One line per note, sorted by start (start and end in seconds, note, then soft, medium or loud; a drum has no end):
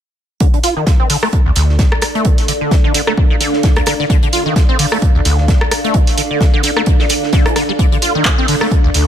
0.40 0.48 D3 medium
0.40 9.07 D4 medium
0.40 kick loud
0.40 closed hi-hat medium
0.53 0.59 D3 medium
0.53 closed hi-hat soft
0.63 0.74 F4 medium
0.63 closed hi-hat medium
0.63 open hi-hat loud
0.75 0.85 D#3 loud
0.75 9.07 D5 medium
0.86 9.07 A4 medium
0.86 kick loud
0.86 snare loud
0.86 closed hi-hat medium
1.00 1.08 C4 loud
1.10 1.17 D3 loud
1.10 open hi-hat medium
1.23 1.28 A3 loud
1.23 cross-stick medium
1.33 kick loud
1.33 closed hi-hat medium
1.46 1.51 D2 loud
1.56 1.81 D2 loud
1.56 snare soft
1.56 closed hi-hat medium
1.56 open hi-hat loud
1.69 9.07 F5 medium
1.69 snare soft
1.79 1.83 F3 medium
1.79 kick loud
1.79 snare loud
1.79 closed hi-hat medium
1.92 cross-stick medium
2.02 cross-stick medium
2.02 closed hi-hat medium
2.02 open hi-hat loud
2.15 2.27 A3 medium
2.15 closed hi-hat soft
2.25 2.29 C3 medium
2.25 kick loud
2.25 closed hi-hat medium
2.38 snare soft
2.38 open hi-hat medium
2.48 2.53 D3 medium
2.48 closed hi-hat medium
2.48 open hi-hat loud
2.61 2.73 D3 medium
2.71 2.76 F3 medium
2.71 kick loud
2.71 snare loud
2.71 closed hi-hat medium
2.84 2.93 D3 medium
2.94 3.02 D3 loud
2.94 closed hi-hat medium
2.94 open hi-hat loud
3.07 3.13 A3 loud
3.07 cross-stick medium
3.17 kick loud
3.30 3.36 D#3 medium
3.41 3.65 D3 medium
3.41 closed hi-hat medium
3.41 open hi-hat loud
3.53 snare medium
3.63 3.68 F3 medium
3.63 kick loud
3.63 snare loud
3.63 closed hi-hat medium
3.76 3.82 D2 medium
3.76 cross-stick medium
3.76 closed hi-hat soft
3.86 3.94 D3 loud
3.86 cross-stick medium
3.86 closed hi-hat medium
3.86 open hi-hat loud
4.00 4.05 D3 loud
4.00 snare soft
4.10 4.17 D3 medium
4.10 kick loud
4.10 closed hi-hat medium
4.23 4.28 D3 medium
4.23 closed hi-hat soft
4.33 4.44 F4 loud
4.33 closed hi-hat medium
4.33 open hi-hat loud
4.46 4.54 D#3 medium
4.56 kick loud
4.56 snare loud
4.56 closed hi-hat medium
4.69 4.77 C4 loud
4.79 4.86 D3 loud
4.79 open hi-hat loud
4.79 open hi-hat medium
4.92 4.98 A3 medium
4.92 cross-stick medium
5.02 kick loud
5.02 closed hi-hat medium
5.15 5.21 D2 loud
5.25 5.50 D2 medium
5.25 snare soft
5.25 closed hi-hat medium
5.25 open hi-hat loud
5.38 snare soft
5.48 5.53 F3 medium
5.48 kick loud
5.48 snare loud
5.48 closed hi-hat medium
5.61 cross-stick medium
5.71 cross-stick medium
5.71 closed hi-hat medium
5.71 open hi-hat loud
5.84 5.96 A3 loud
5.84 closed hi-hat soft
5.94 5.99 C3 medium
5.94 kick loud
5.94 closed hi-hat medium
6.07 snare soft
6.07 open hi-hat medium
6.18 6.22 D3 medium
6.18 closed hi-hat medium
6.18 open hi-hat loud
6.30 6.42 D3 medium
6.41 6.45 F3 medium
6.41 kick loud
6.41 snare loud
6.41 closed hi-hat medium
6.54 6.62 D3 loud
6.63 6.71 D3 loud
6.63 closed hi-hat medium
6.63 open hi-hat loud
6.77 6.82 A3 loud
6.77 cross-stick medium
6.86 kick loud
6.86 closed hi-hat medium
6.99 7.05 D#3 medium
6.99 snare medium
7.09 7.14 D3 medium
7.09 closed hi-hat medium
7.09 open hi-hat loud
7.23 snare soft
7.33 7.47 D3 medium
7.33 kick loud
7.33 snare loud
7.33 closed hi-hat medium
7.46 7.54 F3 medium
7.46 cross-stick medium
7.46 closed hi-hat soft
7.56 7.63 D3 medium
7.56 cross-stick medium
7.56 closed hi-hat medium
7.56 open hi-hat loud
7.69 7.72 G3 loud
7.79 7.86 D3 medium
7.79 kick loud
7.79 closed hi-hat medium
7.92 7.98 D3 medium
7.92 closed hi-hat soft
8.02 8.13 F4 loud
8.02 closed hi-hat medium
8.02 open hi-hat medium
8.15 8.23 D#3 loud
8.25 kick loud
8.25 snare loud
8.25 clap loud
8.25 closed hi-hat medium
8.38 8.47 C4 loud
8.48 8.55 D3 loud
8.48 open hi-hat loud
8.48 open hi-hat medium
8.61 8.67 A3 medium
8.61 cross-stick medium
8.71 kick loud
8.71 closed hi-hat medium
8.84 8.90 D2 loud
8.94 9.07 D2 medium
8.94 snare soft
8.94 closed hi-hat medium
8.94 open hi-hat loud